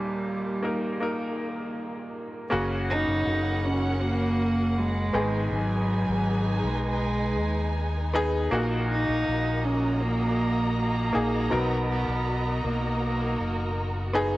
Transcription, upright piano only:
0.00 2.48 D#2 medium
0.00 2.47 A#2 soft
0.00 0.58 A#3 medium
0.00 0.58 D#4 medium
0.00 0.59 G4 medium
0.62 0.99 A#3 medium
0.62 0.99 D#4 medium
0.62 1.00 A#4 medium
1.00 2.43 A#3 medium
1.00 2.44 D#4 medium
1.00 2.44 A#4 medium
2.50 3.60 C#3 medium
2.50 3.93 A#3 medium
2.50 3.94 C#4 medium
2.50 3.94 F#4 medium
5.13 6.22 G#2 medium
5.13 6.23 D#3 medium
5.13 6.56 B3 medium
5.13 6.57 D#4 medium
5.13 6.57 G#4 medium
8.14 8.49 B3 medium
8.14 8.50 D#4 medium
8.14 8.50 G#4 loud
8.51 9.60 A#2 medium
8.51 9.94 A#3 medium
8.51 9.94 D#4 medium
8.51 9.95 F#4 medium
11.13 11.49 A#3 medium
11.13 11.50 D#4 medium
11.13 11.50 G#4 medium
11.50 12.60 B2 medium
11.50 12.60 F#3 medium
11.50 12.93 B3 medium
11.50 12.94 D#4 medium
11.50 12.94 A#4 medium
14.13 14.37 B3 medium
14.13 14.37 D#4 medium
14.13 14.37 G#4 medium

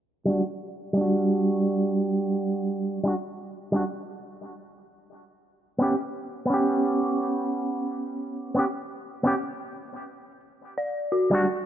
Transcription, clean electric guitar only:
0.25 0.40 G3 medium
0.25 0.41 D4 medium
0.30 0.42 F#4 medium
0.93 2.98 G3 medium
0.93 3.00 D4 medium
1.01 3.02 F#4 medium
3.03 3.12 G3 medium
3.03 3.13 D4 medium
3.08 3.14 F#4 medium
3.72 3.81 G3 medium
3.72 3.82 D4 medium
3.76 3.83 F#4 medium
5.78 5.92 B3 medium
5.78 5.94 C#4 medium
5.82 5.95 G4 medium
6.45 8.50 B3 medium
6.50 8.52 C#4 medium
6.50 8.54 G4 medium
8.55 8.64 B3 medium
8.55 8.65 C#4 medium
8.59 8.66 G4 medium
9.23 9.33 B3 medium
9.23 9.34 C#4 medium
9.23 9.34 G4 medium
11.31 11.45 G3 medium
11.31 11.46 D4 medium
11.31 11.46 F#4 medium

